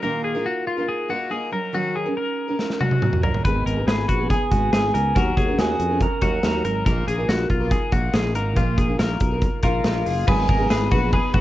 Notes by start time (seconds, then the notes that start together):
0.03 A#2 D#3 A#3 D#4 F4 A#4
0.24 G#4
0.34 A#3 D#4 F4 A#4
0.46 F#4
0.67 F4
0.77 A#3 D#4 F4 A#4
0.88 G#4
1.09 A#3 D#4 F4 F#4 A#4
1.30 A#3 D#4 F4 G#4 A#4
1.52 F#3 C#4 D#4 A#4
1.73 D#3 F#3 C#4 D#4 F#4 A#4
1.95 G#4
2.05 C#4 D#4 A#4
2.17 A#4
2.48 C#4 D#4 A#4
2.59 snare
2.70 snare
2.80 F#3 C#4 D#4 F#4 A#4, high tom
2.91 high tom
3.02 F#3 C#4 D#4 A#4, mid tom
3.13 mid tom
3.23 F#3 C#4 D#4 A#4, floor tom
3.34 floor tom
3.45 G#1 G#2 D#3 G#3 B3 D#4 G#4 B4, kick, closed hi-hat
3.66 G#1 A#4, closed hi-hat
3.76 G#3 B3 D#4 G#4
3.87 G#1 G#4 B4, snare, closed hi-hat
4.09 A#1 F#4, kick, closed hi-hat
4.19 G#3 B3 D#4 G#4
4.30 G#4, kick, closed hi-hat
4.51 G#1 G#3 B3 D#4 F#4 G#4, kick, closed hi-hat
4.73 G#1 G#3 B3 D#4 G#4, snare, closed hi-hat
4.94 C#2 G#3 B3 D#4 G#4 A#4, closed hi-hat
5.15 D#2 D#3 F#3 C#4 D#4 F#4 A#4, kick, closed hi-hat
5.37 D#2 G#4, kick, closed hi-hat
5.48 C#4 D#4 A#4
5.58 D#2 F#4 G#4, snare, closed hi-hat
5.80 F2, closed hi-hat
5.90 C#4 D#4 A#4
6.01 A#4, kick, closed hi-hat
6.22 D#2 F#3 C#4 D#4 F#4 A#4, kick, closed hi-hat
6.43 D#2 F#3 C#4 D#4 A#4, snare, closed hi-hat
6.64 G#1 F#3 C#4 D#4 A#4, closed hi-hat
6.86 A#1 A#2 D#3 A#3 D#4 F4 A#4, kick, closed hi-hat
7.08 A#1 G#4, closed hi-hat
7.17 A#3 D#4 F4 A#4
7.29 A#1 F#4, snare, closed hi-hat
7.50 B1 F4, kick, closed hi-hat
7.60 A#3 D#4 F4 A#4
7.71 G#4, kick, closed hi-hat
7.92 A#1 A#3 D#4 F4 F#4 A#4, kick, closed hi-hat
8.14 A#1 A#3 D#4 F4 G#4 A#4, snare, closed hi-hat
8.35 G#1 A#3 D#4 F4 A#4, closed hi-hat
8.56 A#1 A#2 D#3 A#3 D#4 F4 A#4, kick, closed hi-hat
8.78 A#1 G#4, kick, closed hi-hat
8.88 A#3 D#4 F4 A#4
8.99 A#1 A#4, snare, closed hi-hat
9.20 B1, kick, closed hi-hat
9.31 A#3 D#4 F4 A#4
9.42 kick, closed hi-hat
9.63 A#1 A#3 D#4 F4 A#4, kick, closed hi-hat
9.84 A#1 A#3 D#4 F4 A#4, snare, closed hi-hat
10.05 F#1 A#3 D#4 F4 G#4 A#4, open hi-hat
10.27 G#1 G#2 D#3 F#3 B3 D#4 G#4 B4, kick, crash, tambourine
10.48 G#1 A#4, kick, ride, tambourine
10.58 F#3 B3 D#4 G#4
10.70 G#1 G#4 B4, snare, ride, tambourine
10.91 A#1 F#3 B3 D#4 F#4 G#4, kick, ride, tambourine
11.12 G#4 B4, kick, ride
11.33 G#1 F#3 B3 D#4 F#4 G#4, kick, ride